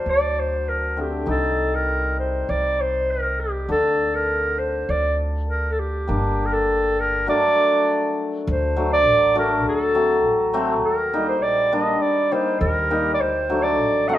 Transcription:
Already playing: hammered dulcimer F#3 D4, clarinet C5
0.06 upright bass D2, clarinet D5
0.39 clarinet C5
0.69 clarinet A#4
0.97 hammered dulcimer D3 A3 C4, clarinet G4
1.26 upright bass C2, hammered dulcimer G3 C4 D#4
1.30 clarinet A4
1.75 clarinet A#4
2.19 clarinet C5
2.49 upright bass C2, clarinet D5
2.81 clarinet C5
3.11 clarinet A#4
3.40 clarinet G4
3.68 upright bass D2, hammered dulcimer D3 D4, clarinet A4
4.15 clarinet A#4
4.59 clarinet C5
4.89 upright bass D2, clarinet D5
5.50 clarinet A#4
5.71 clarinet A4
5.79 clarinet G4
6.07 upright bass G1, hammered dulcimer G3 A#3 D4
6.46 clarinet A#4
6.52 clarinet A4
7.00 clarinet A#4
7.26 hammered dulcimer F#3 A3 D4, clarinet D5
8.47 upright bass D2, clarinet C5
8.76 hammered dulcimer F#3 A3 D4
8.93 clarinet D5
9.06 upright bass A1
9.35 hammered dulcimer F#3 A3 D4, clarinet A#4
9.66 upright bass D2, clarinet A4
9.95 hammered dulcimer F#3 A3 C4
10.25 upright bass A1
10.53 hammered dulcimer F#3 A3 C4
10.84 upright bass D#2, clarinet A#4
11.13 hammered dulcimer G3 A#3 D#4
11.28 clarinet C5
11.42 upright bass A#1, clarinet D5
11.72 hammered dulcimer G3 A#3 D4, clarinet D#5
12.02 upright bass D#2, clarinet D5
12.32 hammered dulcimer G3 A#3 D#4, clarinet C5
12.60 upright bass D#2, clarinet A#4
12.90 hammered dulcimer G3 A#3 D#4
13.14 clarinet D5
13.20 upright bass D2, clarinet C5
13.49 hammered dulcimer F#3 A3 D4
13.63 clarinet D5
13.80 upright bass A1
14.08 hammered dulcimer F#3 A3 C4, clarinet F#5
14.14 clarinet D#5

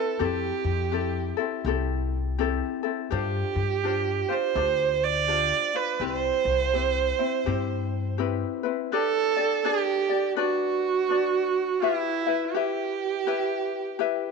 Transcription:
Already playing: ukulele C4 E4 B4, viola A4
0.19 upright bass F2, ukulele C4 E4 G4 A4
0.24 viola G4
0.64 upright bass F2
0.92 ukulele C4 E4 G4 A4
1.37 ukulele C4 E4 A4
1.65 upright bass C2, ukulele C4 E4 G4 A4
2.38 ukulele C4 E4 G4 A4
2.83 ukulele C4 E4 A4
3.10 upright bass G2, ukulele D4 F4 G4 C5
3.16 viola G4
3.56 upright bass G2
3.84 ukulele D4 F4 G4 C5
4.29 ukulele D4 F4 C5, viola C5
4.55 upright bass D2, ukulele D4 F4 G4 C5
5.03 viola D5
5.28 ukulele D4 F4 G4 C5
5.74 ukulele D4 F4, viola B4
6.00 upright bass C2, ukulele C4 E4 G4
6.04 viola C5
6.45 upright bass C2
6.73 ukulele C4 E4 G4
7.19 ukulele C4 E4
7.46 upright bass G2, ukulele C4 E4 G4
8.18 ukulele C4 E4 G4 B4
8.63 ukulele C4 E4 B4
8.92 ukulele D4 G4 B4 D5, viola A4
9.37 ukulele D4 G4 D5
9.64 ukulele D4 G4 B4 D5, viola G4
10.10 ukulele D4 G4 D5
10.36 ukulele D4 B4 D5, viola F#4
11.09 ukulele D4 B4 D5
11.82 viola E4, ukulele E4 G4 B4 E5
12.27 ukulele E4 B4 E5
12.54 ukulele E4 G4 B4 E5, viola G4
13.27 ukulele E4 G4 B4 E5
13.99 ukulele E4 G4 B4 E5

